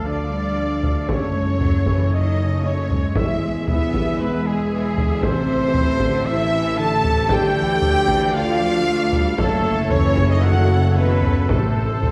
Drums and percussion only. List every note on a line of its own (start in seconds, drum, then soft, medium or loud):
0.83 taiko low medium
1.09 taiko medium
1.61 taiko low medium
1.86 taiko medium
2.90 taiko low soft
3.16 taiko loud
3.68 taiko low medium
3.94 taiko medium
4.98 taiko low medium
5.23 taiko loud
5.74 taiko low medium
6.00 taiko medium
7.04 taiko low medium
7.29 taiko loud
7.82 taiko low medium
8.08 taiko medium
9.12 taiko low medium
9.38 taiko loud
9.90 taiko low medium
10.17 taiko medium
11.23 taiko low medium
11.49 taiko loud
12.03 taiko low medium